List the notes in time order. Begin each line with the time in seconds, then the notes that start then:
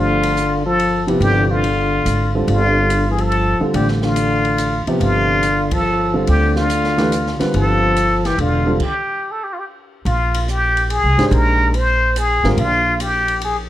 Already playing: G1 D3 F3 A3 D4 F4 G4 C5
0.23 ride
0.37 hi-hat pedal
0.66 F3 A4
0.80 ride
1.07 C3 F3 B3 E4 G4, ride
1.20 G1 D3 G4, ride
1.49 D3 F4
1.64 ride
2.05 G#1, hi-hat pedal, ride
2.35 D3 G3 C4 F4 A4
2.48 G1 D3 F4, ride
2.90 hi-hat pedal, ride
3.09 E3 G#4
3.18 F3 A4, ride
3.32 ride
3.60 D3 G3 C4 F4 A4, muted upright bass stroke
3.74 A1 D3 G4, ride
3.88 snare
4.02 D3 F4, snare
4.16 hi-hat pedal, ride
4.45 ride
4.58 hi-hat pedal, ride
4.87 C3 F3 B3 G4 E5, muted upright bass stroke, ride
5.00 G1 D3 F4, ride
5.43 hi-hat pedal, ride
5.71 F3 A4, kick, ride
6.13 D3 G3 C4 F4 A4
6.27 D2 D3 G4, ride
6.56 D3 F4, snare
6.70 hi-hat pedal, ride
6.84 snare
6.98 E3 A3 D4 G4 B4, snare, ride
7.12 hi-hat pedal, ride
7.27 snare
7.39 D3 G3 C4 F4 B4, muted upright bass stroke, snare, ride
7.54 G1 F3 A4, ride
7.96 hi-hat pedal, ride
8.25 E3 G4, snare, ride
8.38 E1 D3 F4, ride
8.66 D3 G3 C4 F4 A4
8.80 G4, kick, crash
9.31 A4
9.44 G4
9.54 F4
9.59 G4
10.05 A#1 F4, ride
10.34 ride
10.48 G4, hi-hat pedal
10.77 ride
10.90 G#4, ride
11.04 C2
11.17 G#1 D#3 G#3 D4 G4 C5, snare, ride
11.31 A#1 A#4, ride
11.74 C5, ride
12.16 G#4, hi-hat pedal, ride
12.44 G#1 D3 G3 C4 F4 A#4, snare
12.57 A#1 F4, ride
13.00 G4, hi-hat pedal, ride
13.28 ride
13.41 G#4, ride